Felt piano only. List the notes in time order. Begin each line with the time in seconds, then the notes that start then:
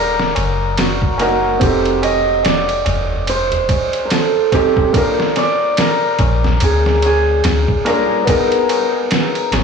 Already playing: A#3 D#4 F#4 A#4
1.20 A#3 D#4 F#4 A#4
1.59 C4 D#4 G4
1.64 A4
4.52 C4 D#4 G4 A4
4.93 A#3 D4 F4
4.97 A#4
7.85 A#3 D4 F4 A#4
8.25 B3 D#4 G#4
8.30 A#4